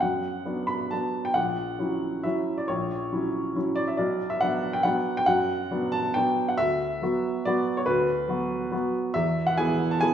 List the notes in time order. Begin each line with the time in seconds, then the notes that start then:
0.01 F#2 F#5
0.45 F#3 B3 D4
0.67 B5
0.91 F#3 B3 D4 A5
1.25 G5
1.34 A#1 F#5
1.79 F#3 C#4 E4
2.23 F#3 C#4 E4 E5
2.58 D5
2.68 A#1 C#5
3.12 F#3 C#4 E4
3.56 F#3 C#4 E4
3.76 D5
3.88 E5
3.97 B1 D5
4.30 E5
4.41 F#3 B3 D4 F#5
4.73 G5
4.83 F#3 B3 D4 F#5
5.17 G5
5.26 F#2 F#5
5.71 F#3 B3 D4
5.92 A5
6.14 F#3 B3 D4 G5
6.48 F#5
6.58 D2 E5
7.02 F#3 B3 F#4
7.45 F#3 B3 F#4 D5
7.77 C#5
7.86 D2 B4
8.28 F#3 B3 F#4
8.72 F#3 B3 F#4
9.14 E2 E5
9.47 F#5
9.58 E3 B3 G#4 G#5
9.91 A5
10.01 E3 B3 G#4 G#5